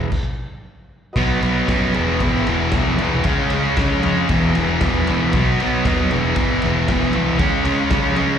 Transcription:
Already playing: E2 B2
0.12 kick, crash
1.13 B1 B2 F#3 F#4 B4 D#5, kick, crash
1.17 B3
1.41 B1 B2 F#3 B3, ride
1.68 F#2 B2 F#3 B3, kick, snare, ride
1.94 E1 E2 B2 E3 G#4 B4 E5, ride
2.20 G#1 E2 B2 E3, kick, ride
2.47 E1 E2 B2 E3, ride
2.72 E1, kick, snare, ride
2.76 E2 B2 E3
2.98 C2 E2 B2, ride
3.03 E3
3.23 C#2 C#3 G#4 C#5, kick, ride
3.27 G#3 C#4 F5
3.50 C#2 C#3, ride
3.55 G#3 C#4
3.77 C#2 C#3 G#3 C#4, kick, snare, ride
4.03 F2 C#3 G#3 C#4 D#5, ride
4.17 F5
4.28 E1 E2 B2 E3 G#4 B4 E5 G#5, kick, ride
4.55 E1 E2 B2 E3, ride
4.70 A#5
4.81 E1 E2 B2 E3 B5, kick, snare, ride
5.07 C#2 E2 B2 E3, ride
5.33 B1 B2 F#3 F#4 B4 D#5, kick, ride
5.37 B3
5.60 B1 B2 F#3 B3, ride
5.85 D#2 B2 F#3 B3, kick, snare, ride
6.10 E1 E2 B2 E3 G#4 B4 E5, ride
6.36 G#1 E2 B2 E3, kick, ride
6.62 E1 E2 B2, ride
6.66 E3
6.88 E1 E2 B2 E3, kick, snare, ride
7.13 C2 E2 B2 E3, ride
7.38 C#2 C#3 G#3 C#4 G#4 C#5 F5, kick, ride
7.64 C#2 C#3 G#3 C#4, ride
7.90 C#2 C#3 G#3 C#4, kick, snare, ride
8.16 C#2 C#3 G#3 C#4, ride

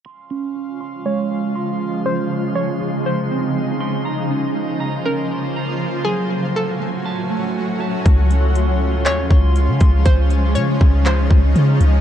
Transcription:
0.05 C#3 F3 G#3 C#4 F4 F5 C6
0.31 C#4
0.81 C6
1.06 G#3 C#5
1.56 C6
2.06 C#3 D#4 C5
2.55 C#5
2.81 C#3
3.06 C5 C6
3.31 C4
3.80 C6
4.05 F3 A#3 C#4 F4 C5 A#5
4.30 C#4
4.80 A#5
5.06 C#4 A#4
5.56 A#5
6.05 A2 F#3 A3 C#4 F#4 G#4 G#5
6.56 A4
6.81 F#3
7.06 A5
7.30 A3
7.80 A5
8.06 C#2 C#3 F3 G#3 C#4 F4 C6, kick, closed hi-hat
8.31 closed hi-hat
8.55 closed hi-hat
9.06 D#2 C#5, clap, closed hi-hat
9.30 C#2, kick
9.56 closed hi-hat
9.68 C#3
9.80 C#2, kick, closed hi-hat
10.06 C#2 D#4 C5, kick, closed hi-hat
10.30 closed hi-hat
10.55 C#3 C#5, closed hi-hat
10.81 C#2, kick
11.06 C5, clap, closed hi-hat
11.30 C#2, kick
11.56 C#3, closed hi-hat
11.81 C#2, closed hi-hat

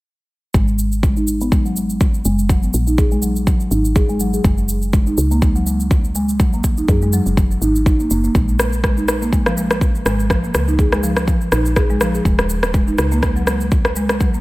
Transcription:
0.54 G#1 G#3, kick, shaker
0.68 shaker
0.79 shaker
0.92 shaker
1.03 G#3, kick, shaker
1.17 D#4, shaker
1.28 shaker
1.41 B3, shaker
1.52 G#3, kick, shaker
1.65 F#3, shaker
1.76 G#3, shaker
1.90 shaker
2.01 kick, shaker
2.14 shaker
2.25 F#1 G#3, shaker
2.39 shaker
2.49 F#3, kick, shaker
2.63 B3, shaker
2.74 A#1, shaker
2.87 D#4, shaker
2.98 G#4, kick, shaker
3.11 G#3, shaker
3.22 F#3, shaker
3.36 shaker
3.47 F#3, kick, shaker
3.60 shaker
3.71 G#1 D#4, shaker
3.85 shaker
3.96 G#4, kick, shaker
4.09 G#3, shaker
4.20 F#3, shaker
4.33 G#4, shaker
4.44 F#1 G#3, kick, shaker
4.58 shaker
4.69 shaker
4.82 shaker
4.93 G#3, kick, shaker
5.07 D#4, shaker
5.18 C#2, shaker
5.31 A#3, shaker
5.42 G#3, kick, shaker
5.56 F#3, shaker
5.67 G#3, shaker
5.80 shaker
5.91 kick, shaker
6.04 shaker
6.15 G#3, shaker
6.29 shaker
6.40 F#3, kick, shaker
6.53 A#3, shaker
6.64 kick, shaker
6.77 D#4, shaker
6.88 F#2 G#4, kick, shaker
7.02 G#3, shaker
7.13 F#3, shaker
7.26 F#1, shaker
7.37 F#3, kick, shaker
7.51 shaker
7.62 G#1 D#4, shaker
7.75 shaker
7.86 D#4, kick, shaker
8.00 A#3, shaker
8.11 F#1 A#3, shaker
8.24 A#3, shaker
8.35 A#1 G#3, kick, shaker
8.48 shaker
8.59 cross-stick, shaker
8.73 shaker
8.84 G#3, kick, cross-stick, shaker
8.97 D#4, shaker
9.08 cross-stick, shaker
9.22 A#3, shaker
9.33 G#3, kick, shaker
9.46 F3, cross-stick, shaker
9.57 G#3, shaker
9.71 cross-stick, shaker
9.81 kick, shaker
9.95 shaker
10.06 G#1 G#3, cross-stick, shaker
10.20 shaker
10.30 F3, kick, cross-stick, shaker
10.44 A#3, shaker
10.55 C#2, cross-stick, shaker
10.68 D#4, shaker
10.79 G#4, kick, shaker
10.92 G#3, cross-stick, shaker
11.03 F3, shaker
11.17 cross-stick, shaker
11.28 F3, kick, shaker
11.41 shaker
11.52 A#1 D#4, cross-stick, shaker
11.66 shaker
11.76 G#4, kick, cross-stick, shaker
11.90 G#3, shaker
12.01 F3, cross-stick, shaker
12.14 G#4, shaker
12.25 D#1 G#3, kick, shaker
12.39 cross-stick, shaker
12.50 shaker
12.63 cross-stick, shaker
12.74 G#3, kick, shaker
12.88 D#4, shaker
12.98 C#2, cross-stick, shaker
13.12 A#3, shaker
13.23 G#3, kick, cross-stick, shaker
13.36 F#3, shaker
13.47 G#3, cross-stick, shaker
13.61 shaker
13.72 kick, shaker
13.85 cross-stick, shaker
13.96 G#3, shaker
14.09 cross-stick, shaker
14.20 F#3, kick, shaker
14.34 A#3, shaker

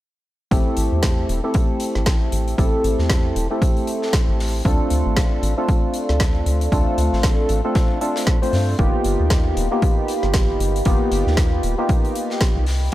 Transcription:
0.51 A1 A3 C4 E4 G4 A4 E5 G5 C6, kick, closed hi-hat
0.77 A1, closed hi-hat
0.92 E2
1.03 kick, snare, closed hi-hat
1.29 E1, closed hi-hat
1.44 A3 C4 E4 G4 A4
1.54 kick, closed hi-hat
1.80 closed hi-hat
1.95 A1, snare
2.06 kick, snare, closed hi-hat
2.32 A1, closed hi-hat
2.48 closed hi-hat
2.58 A1 A3 C4 E4 G4 A4, kick, closed hi-hat
2.84 A1, closed hi-hat
2.99 E2, snare
3.10 kick, snare, closed hi-hat
3.36 E1, closed hi-hat
3.51 A3 C4 E4 G4 A4
3.62 kick, closed hi-hat
3.77 closed hi-hat
3.87 closed hi-hat
4.02 snare
4.13 kick, snare, closed hi-hat
4.28 A1
4.40 snare, open hi-hat
4.65 D2 A3 C4 D4 F4 A4 D5 F5, kick, closed hi-hat
4.90 D2, closed hi-hat
5.06 A1
5.17 kick, snare, closed hi-hat
5.43 A1, closed hi-hat
5.57 A3 C4 D4 F4 A4
5.69 kick, closed hi-hat
5.94 closed hi-hat
6.09 D2, snare
6.20 kick, snare, closed hi-hat
6.46 D2, closed hi-hat
6.61 closed hi-hat
6.72 A3 C4 D4 F4 A4, kick, closed hi-hat
6.98 D2, closed hi-hat
7.13 A1, snare
7.23 kick, snare, closed hi-hat
7.49 A1, closed hi-hat
7.64 A3 C4 D4 F4 A4
7.75 kick, snare, closed hi-hat
8.01 A3 C4 D4 F4 A4, closed hi-hat
8.16 snare, closed hi-hat
8.27 kick, snare
8.42 A3 C4 D4 F4 C5, closed hi-hat
8.53 G2, snare, open hi-hat
8.78 G1 A#3 B3 D#4 F4 G4 D#5 F5 B5, kick, closed hi-hat
9.04 G1, closed hi-hat
9.20 D#2
9.30 kick, snare, closed hi-hat
9.56 D#1, closed hi-hat
9.71 A#3 B3 D#4 F4 G4
9.82 kick, closed hi-hat
10.08 closed hi-hat
10.23 G1, snare
10.33 kick, snare, closed hi-hat
10.60 G1, closed hi-hat
10.76 closed hi-hat
10.85 G1 A#3 B3 D#4 F4 G4 G5, kick, closed hi-hat
11.12 G1, closed hi-hat
11.27 D#2, snare
11.37 kick, snare, closed hi-hat
11.63 D#1, closed hi-hat
11.78 A#3 B3 D#4 F4 G4
11.89 kick, closed hi-hat
12.05 closed hi-hat
12.15 closed hi-hat
12.30 snare
12.41 kick, snare, closed hi-hat
12.56 C2
12.66 D5 E5 B5 D6, snare, open hi-hat

